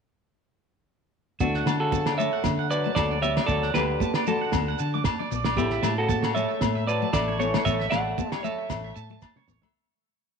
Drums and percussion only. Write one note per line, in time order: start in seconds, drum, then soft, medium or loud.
1.40 kick medium
1.40 muted conga soft
1.40 shekere medium
1.54 snare soft
1.66 snare medium
1.66 low agogo medium
1.66 shekere medium
1.92 kick medium
1.92 muted conga soft
1.92 high conga medium
1.92 shekere medium
2.06 snare medium
2.06 low agogo medium
2.20 shekere medium
2.44 kick medium
2.44 snare medium
2.44 muted conga soft
2.44 high conga medium
2.44 low agogo medium
2.44 shekere medium
2.71 muted conga soft
2.71 shekere medium
2.96 kick medium
2.96 snare medium
2.96 high conga medium
2.96 low agogo medium
2.96 shekere medium
3.23 shekere medium
3.37 snare medium
3.37 low agogo medium
3.48 kick medium
3.48 muted conga soft
3.48 shekere medium
3.63 snare soft
3.74 snare medium
3.74 low agogo medium
3.74 shekere medium
4.00 kick medium
4.00 muted conga soft
4.00 high conga medium
4.00 shekere medium
4.14 snare medium
4.14 low agogo medium
4.27 low conga medium
4.27 shekere medium
4.52 kick medium
4.52 snare medium
4.52 muted conga soft
4.52 high conga medium
4.52 low agogo medium
4.52 shekere medium
4.79 shekere medium
5.04 kick medium
5.04 snare medium
5.04 high conga medium
5.04 low agogo medium
5.04 shekere medium
5.32 shekere medium
5.44 snare medium
5.44 low agogo medium
5.57 kick medium
5.57 muted conga soft
5.57 shekere medium
5.70 snare soft
5.83 snare medium
5.83 low agogo medium
5.83 shekere medium
6.09 kick medium
6.09 snare soft
6.09 muted conga soft
6.09 high conga medium
6.09 shekere medium
6.23 snare medium
6.23 low agogo medium
6.37 shekere medium
6.61 kick medium
6.61 snare medium
6.61 muted conga soft
6.61 high conga medium
6.61 low agogo medium
6.61 shekere medium
6.88 muted conga soft
6.88 shekere medium
7.13 kick medium
7.13 snare medium
7.13 high conga medium
7.13 low agogo medium
7.13 shekere medium
7.41 shekere medium
7.54 snare medium
7.54 low agogo medium
7.66 kick medium
7.66 shekere medium
7.80 snare soft
7.92 snare medium
7.92 low agogo medium
7.92 shekere medium
8.18 kick medium
8.18 muted conga soft
8.18 high conga medium
8.18 shekere medium
8.32 snare medium
8.32 low agogo medium
8.45 low conga medium
8.45 shekere medium
8.70 kick medium
8.70 snare medium
8.70 muted conga soft
8.70 high conga medium
8.70 low agogo medium
8.70 shekere medium
8.96 muted conga soft
8.96 shekere medium
9.22 kick medium
9.22 snare soft
9.22 high conga medium
9.22 low agogo medium
9.22 shekere medium
9.36 high tom soft
9.48 mid tom medium
9.48 shekere medium
9.62 floor tom medium
9.62 low agogo medium